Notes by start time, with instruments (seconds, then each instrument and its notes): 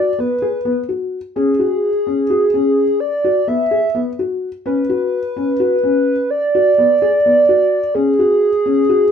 Already playing: soft synth lead D5
0.19 felt piano B3, soft synth lead B4
0.42 felt piano G#4
0.65 felt piano B3
0.89 felt piano F#4
1.36 felt piano C#4, soft synth lead G#4
1.59 felt piano F#4
2.07 felt piano C#4
2.30 felt piano F#4
2.54 felt piano C#4
3.00 soft synth lead D5
3.24 felt piano F#4
3.48 felt piano B3, soft synth lead E5
3.71 felt piano G#4
3.95 felt piano B3
4.19 felt piano F#4
4.66 felt piano C#4, soft synth lead B4
4.89 felt piano F#4
5.36 felt piano C#4
5.60 felt piano F#4
5.83 felt piano C#4
6.30 soft synth lead D5
6.55 felt piano F#4
6.78 felt piano B3
7.02 felt piano G#4
7.26 felt piano B3
7.49 felt piano F#4
7.95 felt piano C#4, soft synth lead G#4
8.19 felt piano F#4
8.66 felt piano C#4
8.89 felt piano F#4